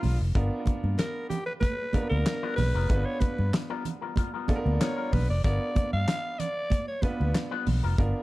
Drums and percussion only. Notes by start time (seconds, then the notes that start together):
0.03 open hi-hat, muted conga, high conga, low conga
0.35 kick, closed hi-hat
0.66 kick, closed hi-hat, muted conga, high conga
0.84 high conga
0.98 snare, clap, closed hi-hat, muted conga
1.30 closed hi-hat, muted conga, low conga
1.61 kick, closed hi-hat, muted conga, high conga
1.93 kick, closed hi-hat, muted conga, high conga
2.12 high conga
2.26 snare, clap, closed hi-hat
2.58 open hi-hat, muted conga, high conga, low conga
2.89 kick, closed hi-hat, muted conga
3.21 kick, closed hi-hat, muted conga, high conga
3.38 high conga
3.54 snare, clap, closed hi-hat
3.85 closed hi-hat, muted conga, low conga
4.16 kick, closed hi-hat, high conga
4.48 kick, closed hi-hat, muted conga, high conga
4.66 high conga
4.81 snare, clap, closed hi-hat, muted conga
5.13 kick, open hi-hat, muted conga, high conga, low conga
5.44 kick, closed hi-hat, muted conga
5.76 kick, closed hi-hat, muted conga, high conga
5.93 high conga
6.08 snare, clap, closed hi-hat
6.40 closed hi-hat, low conga
6.70 kick, closed hi-hat, muted conga, high conga
7.02 kick, closed hi-hat, muted conga, high conga
7.21 high conga
7.34 snare, clap, closed hi-hat, muted conga
7.67 open hi-hat, high conga, low conga
7.98 kick, closed hi-hat, muted conga